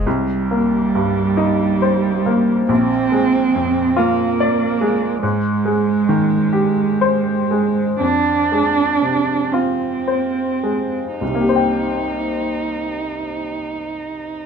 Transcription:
X:1
M:6/8
L:1/8
Q:3/8=44
K:Cm
V:1 name="Cello"
G,6 | C3 B,3 | A,6 | D3 C3 |
E6 |]
V:2 name="Grand piano" clef=bass
C,, B, G,, E c B, | B,,, A, F,, F d A, | A,, A, E, G c A, | F,, A, C, F c A, |
[C,,C,B,Gcg]6 |]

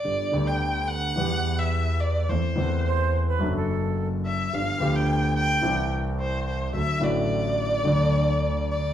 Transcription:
X:1
M:4/4
L:1/16
Q:1/4=107
K:G
V:1 name="Violin"
d3 g3 f4- f e3 d2 | c6 z8 e2 | =f3 g3 g4 z2 c2 c2 | e2 d12 d2 |]
V:2 name="Flute"
z16 | z4 c3 B2 A4 z3 | z16 | z16 |]
V:3 name="Grand piano" clef=bass
[G,,,G,,D,G,B,G]2 [D,,D,G,B,G]6 [E,,E,G,B,G]8 | [E,,E,A,CA]2 [E,,E,A,CA]6 [F,,F,A,DA]8 | [G,,,G,,=F,B,DG]2 [D,,D,F,B,DG]6 [C,,C,E,G,CG]8 | [D,,D,F,A,F]2 [A,,,A,,D,F,A,F]6 [D,,D,F,A,F]8 |]
V:4 name="Double bass" clef=bass
G,,,2 D,,6 E,,8 | E,,2 E,,6 F,,,8 | G,,,2 D,,6 C,,8 | D,,2 A,,,6 D,,8 |]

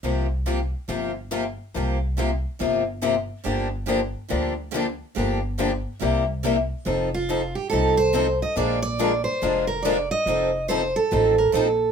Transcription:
X:1
M:4/4
L:1/8
Q:"Swing" 1/4=141
K:Fmix
V:1 name="Steel-string acoustic guitar"
z8 | z8 | z8 | z8 |
z F2 G A c2 e | d d2 c2 B d e- | e2 c A2 B A2 |]
V:2 name="Steel-string acoustic guitar"
[C,F,B,FG] z [C,F,B,FG] z [C,F,B,FG] z [C,F,B,FG] z | [C,F,B,FG] z [C,F,B,FG] z [C,F,B,FG] z [C,F,B,FG] z | [D,F,B,DG] z [D,F,B,DG] z [D,F,B,DG] z [D,F,B,DG] z | [D,F,B,DG] z [D,F,B,DG] z [C,G,B,=EG] z [C,G,B,EG] z |
[F,CEA] z [F,CEA] z [F,CEA] z [F,CEA] z | [F,_A,DFB] z [F,A,DFB] z [F,A,DFB] z [F,A,DFB] z | [F,CEA] z [F,CEA] z [F,CEA] z [F,CEA] z |]
V:3 name="Steel-string acoustic guitar"
[C,F,B,FG] z [C,F,B,FG] z [C,F,B,FG] z [C,F,B,FG] z | [C,F,B,FG] z [C,F,B,FG] z [C,F,B,FG] z [C,F,B,FG] z | [D,F,B,DG] z [D,F,B,DG] z [D,F,B,DG] z [D,F,B,DG] z | [D,F,B,DG] z [D,F,B,DG] z [C,G,B,=EG] z [C,G,B,EG] z |
[F,CEA] z [F,CEA] z [F,CEA] z [F,CEA] z | [D,F,B,D_A] z [D,F,B,DA] z [D,F,B,DA] z [D,F,B,DA] z | [F,CEA] z [F,CEA] z [F,CEA] z [F,CEA] z |]
V:4 name="Upright bass" clef=bass
C,,4 G,,,4 | C,,4 G,,,4 | G,,,4 D,,4 | G,,,4 C,,4 |
F,,,4 C,,4 | B,,,4 F,,,4 | F,,,4 A,,,2 B,,,2 |]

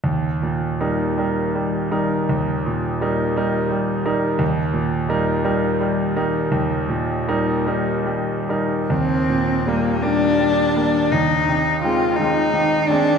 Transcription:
X:1
M:12/8
L:1/8
Q:3/8=55
K:Eb
V:1 name="Cello"
z12 | z12 | C2 B, D3 E2 F E2 D |]
V:2 name="Grand piano" clef=bass
E,, B,, [G,EB] [G,EB] G, [G,EB] E,, B,, [G,EB] [G,EB] G, [G,EB] | E,, B,, [G,EB] [G,EB] G, [G,EB] E,, B,, [G,EB] [G,EB] G, [G,EB] | E,, B,, [G,B,] [G,B,] G, [G,B,] E,, C, [E,A,C] [E,A,C] E, [E,A,C] |]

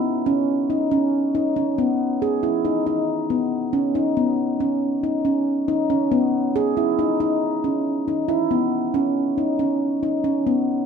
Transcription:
X:1
M:5/4
L:1/8
Q:1/4=138
K:B
V:1 name="Handpan"
B, C2 D C2 D C B,2 | G E D D2 B,2 C D B,- | B, C2 D C2 D C B,2 | G E D D2 C2 D E B,- |
B, C2 D C2 D C B,2 |]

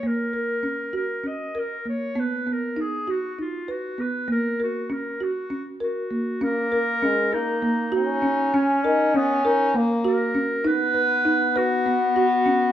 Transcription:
X:1
M:7/8
L:1/8
Q:1/4=99
K:Gb
V:1 name="Clarinet"
B3 B e B d | =B _B A ^F =F ^F =B | B G B G2 G2 | B3 E2 E2 |
D2 C E z B2 | =B3 ^F2 F2 |]
V:2 name="Marimba"
B, B D G D B B, | =B, B, ^D ^F D =B B, | B, B D G D B B, | D B D B B, G D |
D B D B B, G D | ^D =B D B =B, ^F _D |]
V:3 name="French horn"
z6 z | z6 z | z6 z | B,2 A, B,2 D2- |
D E D2 B,2 z | =B,6- B, |]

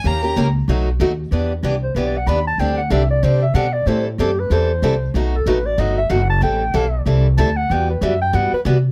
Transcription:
X:1
M:4/4
L:1/8
Q:"Swing" 1/4=188
K:B
V:1 name="Violin"
a2 z6 | [K:Em] z8 | z8 | z8 |
z8 | z8 | z8 |]
V:2 name="Clarinet"
z8 | [K:Em] z3 c (3B d f b a | g f e d c e f d | c E G B c4 |
z A B d ^d e f a | g4 z2 a f | g B e g f B z2 |]
V:3 name="Steel-string acoustic guitar"
[D,A,C=GA] [CGA] [D,A,CGA] z [B,,F,=A,DF] z [B,,F,A,DF] z | [K:Em] [E,B,DG] z [E,B,DG] z [E,B,DG] z [E,B,DG] z | [D,G,CDG] z [D,G,CDG] z [D,G,CDG] z [D,G,CDG] z | [E,G,CEA] z [E,G,CEA] z [E,G,CEA] z [E,G,CEA] z |
[B,,F,A,^DF] z [B,,F,A,DF] z [B,,F,A,DF] z [B,,F,A,DF] z | [E,G,CEA] z [E,G,CEA] z [E,G,CEA] z [E,G,CEA] z | [E,G,B,F] z [E,G,B,F] z [E,G,B,F] z [E,G,B,F] z |]
V:4 name="Upright bass" clef=bass
D,,2 C,,2 B,,,2 D,,2 | [K:Em] E,,2 C,,2 B,,,2 ^D,,2 | D,,2 C,,2 C,2 B,,2 | A,,2 F,,2 E,,2 C,,2 |
B,,,2 A,,,2 G,,,2 F,,,2 | A,,,2 B,,,2 C,,2 D,,2 | E,,2 F,,2 G,, z C,2 |]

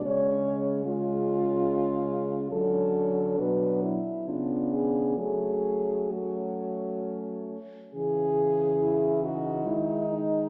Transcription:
X:1
M:3/4
L:1/8
Q:1/4=69
K:F#m
V:1 name="French horn"
c z ^E4 | A2 B E ^E G | G2 F2 z2 | [K:C#m] G3 F E D |]
V:2 name="French horn"
C2 C4 | C2 D z D2 | C2 C3 z | [K:C#m] z2 E D3 |]
V:3 name="French horn" clef=bass
G,2 G,4 | F,2 F, z B,2 | A,2 A,3 z | [K:C#m] E,4 G,2 |]
V:4 name="French horn" clef=bass
C,6 | D,2 B,, z C,2 | F,4- F, z | [K:C#m] C,4 D,2 |]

